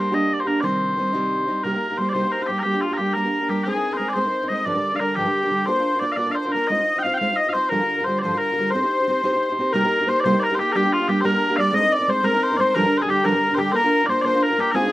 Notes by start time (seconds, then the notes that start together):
Already playing: G3 A#3 D4
0.00 G4 C5
0.12 G3 A#3 D4 G4 D#5
0.33 D5
0.40 C5
0.45 A#3 D4 G4 A#4
0.61 C3 D#3 G3 C4 D#4 C5 D5
0.97 D#3 G3 C4 D#4
1.13 C3 D#3 G3 C4 D#4
1.48 G3 C4 D#4
1.64 C3 G3 A#3 D#4 G4 A#4
1.74 A#3 D#4 G4
1.90 A#3 D#4 G4
1.98 G3 A#3 D#4 G4 C5
2.09 D5
2.13 C3 G3 A#3 D#4 G4 C5
2.24 A#3 D#4 G4
2.32 A#4
2.41 A#3 D#4 G4 C5
2.46 G3 A#3 G4
2.51 D#4 G4
2.59 G4 A#4
2.64 G3 A#3 D4 G4
2.74 A#3 D4 G4
2.81 F4
2.90 A#3 D4 G4 A#4
2.97 G3 A#3 D4 G4
3.01 G4
3.13 G3 A#3 D4 A#4
3.18 G4
3.24 A#3 D4 G4
3.41 A#3 D4 G4
3.49 G3 A#3 D4 G4
3.64 G#3 C4 D#4 G#4 A#4
3.75 C4 D#4 A#4
3.91 C4 D#4 A#4 C5
3.97 G#3 C4 A#4
4.01 D#4 A#4
4.09 D5
4.13 G#3 C4 C5
4.17 D#4 A#4 C5
4.24 C4 D#4 A#4
4.42 C4 D#4 A#4
4.48 G#3 C4 D#4 D#5
4.52 A#4
4.65 G2 D3 F3 G3 D4 A#4 D5
4.74 D3 G3 D4 A#4
4.92 D3 G3 D4 A#4 F5
4.99 D3 G3 D4 A#4
5.15 G2 D3 F3 G3 D4 G4 A#4
5.25 D3 G3 D4 A#4
5.43 D3 G3 D4 A#4
5.50 D3 G3 D4 A#4
5.66 A#3 D4 F4 A#4 C5
5.77 D4 F4 A#4
5.94 D4 F4 A#4
5.99 A#3 D4 F4 D5
6.04 A#4
6.12 F5
6.16 A#3 D4 F4 A#4 D5
6.26 D4 F4 A#4
6.32 C5 F5
6.38 C5
6.45 D4 F4 A#4
6.52 A#3 D4 A#4
6.56 F4 A#4
6.67 G#3 C4 D#4 D#5
6.71 F4 C5
6.80 D#4 F4 C5
6.96 D#4 F4 C5 G5
7.03 C4 D#4 F4 F5
7.07 C5
7.14 F5 G5
7.21 G#3 C4 D#4 F4 C5 F5
7.30 D#4 F4 C5
7.36 D#5
7.47 D#4 F4 C5 F5
7.53 C4 D#4 F4 C5
7.69 G2 D3 F3 G3 F4 A#4
7.80 D3 G3 F4 A#4
7.99 D3 G3 F4 A#4
8.04 D3 G3 C5
8.09 F4 A#4
8.19 C5 D5
8.23 G2 D3 F3 G3 F4 A#4
8.34 D3 G3 F4 A#4
8.39 A#4
8.51 D3 G3 F4 A#4
8.58 D3 G3 F4 A#4
8.70 C4 C5
8.75 D#4 G4 C5
8.82 D#4 G4 C5
9.00 D#4 G4 C5
9.08 C4 D#4 G4 C5
9.23 C4 D#4 G4 C5
9.33 D#4 G4 C5
9.49 D#4 G4 C5
9.59 C4 D#4 G4 C5
9.71 C3 G3 A#3 D#4 A#4
9.75 G4 A#4
9.83 A#3 D#4 G4 A#4
10.00 A#3 D#4 G4 A#4
10.07 A#3 D#4 G4 A#4 C5
10.20 C5 D5
10.24 C3 G3 A#3 D#4 G4 A#4 C5
10.31 A#3 D#4 G4 A#4
10.40 A#4 D5
10.50 A#3 D#4 G4 A#4
10.55 A#3 G4 C5
10.59 D#4 G4 A#4
10.70 G#4 A#4
10.74 G3 A#3 D4 G4
10.84 A#3 D4 G4
10.93 F4
10.99 A#3 D4 G4
11.08 G3 A#3 D4 G4
11.21 G3 A#3 D4 A#4 C5
11.25 G4 A#4
11.34 A#3 D4 G4
11.50 A#3 D4 G4
11.56 G3 A#3 D4 G4 D5 F5
11.73 G#3 C4 D#4 A#4 D#5
11.81 C4 D#4 A#4
11.92 D5
11.99 C4 D#4 A#4
12.08 G#3 C4 D#4 A#4 C5
12.23 G#3 C4 D#4 A#4
12.32 C4 D#4 A#4
12.43 C5
12.52 C4 D#4 A#4
12.57 G#3 C4 D#4 C5 D5
12.61 A#4
12.74 G2 D3 F3 G3 D4 A#4
12.84 D3 G3 D4 A#4
12.98 G#4 C5
13.02 D3 G3 D4 G#4 A#4
13.07 D3 G3 D4 G4
13.12 A#4
13.23 G2 D3 F3 G3 D4 A#4
13.33 D3 G3 D4 A#4
13.49 D3 G3 D4 A#4
13.55 D3 G3 G4 C5
13.59 D4 G4 A#4
13.72 A#3 D4 F4 A#4 C5
13.76 A#4
13.82 D4 F4 A#4
14.03 D4 F4 D5
14.09 A#3 D4 F4 A#4 C5
14.21 A#3 C5 D5
14.25 D4 F4 A#4 C5
14.34 D4 F4 A#4
14.43 A#4
14.50 D4 F4 A#4
14.58 A#3 D4 F4 G4 A#4
14.71 G#3 C4 D#4 G#4 A#4
14.76 F4
14.85 C4 D#4 F4